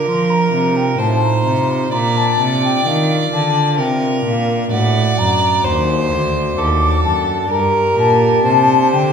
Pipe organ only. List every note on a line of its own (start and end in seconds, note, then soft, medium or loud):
0.00 0.93 D4 soft
0.00 0.93 F4 soft
0.00 0.94 A#4 medium
0.07 0.49 F3 medium
0.53 0.95 C3 medium
0.95 1.88 D#4 medium
0.95 1.87 F4 medium
0.95 1.89 C5 soft
1.00 1.42 A2 medium
1.46 1.89 C3 medium
1.88 4.65 D4 medium
1.88 4.66 F4 medium
1.88 4.67 D5 soft
1.92 2.35 A#2 medium
2.39 2.82 C3 medium
2.86 3.28 D#3 medium
3.32 3.74 D3 medium
3.78 4.21 C3 medium
4.25 4.67 A#2 medium
4.67 7.44 D4 medium
4.67 7.45 F#4 medium
4.67 7.45 D5 medium
4.72 5.14 A2 medium
5.18 5.60 F#2 medium
5.64 6.07 D#2 medium
6.11 6.53 D2 medium
6.57 6.99 D#2 medium
7.03 7.46 F#2 medium
7.46 9.13 D4 medium
7.46 9.13 G4 medium
7.46 9.13 D5 medium
7.51 7.94 G2 medium
7.98 8.41 A#2 medium
8.46 8.89 C3 medium
8.94 9.13 D3 medium